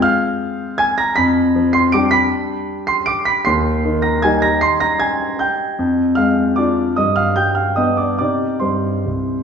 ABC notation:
X:1
M:3/4
L:1/8
Q:1/4=154
K:Cm
V:1 name="Grand piano"
[ff']4 [aa'] [bb'] | [=b=b']3 [c'c''] [d'd''] [bb']- | [=b=b']3 [c'c''] [d'd''] [bb'] | [c'c'']3 [bb'] [aa'] [bb'] |
[c'c''] [bb'] [aa']2 [gg'] z | z2 [ff']2 [dd']2 | [ee'] [ff'] [gg'] [ff'] [ee'] [dd'] | [dd']2 [cc']4 |]
V:2 name="Grand piano" clef=bass
[A,CF]6 | F,,2 F,2 [G,DG]2- | [G,DG]6 | E,,2 E,2 [G,EG]2- |
[G,EG]6 | F,,2 A,2 [DF]2 | G,,2 G,2 [=B,D]2 | [C,CE]2 G,,2 C,,2 |]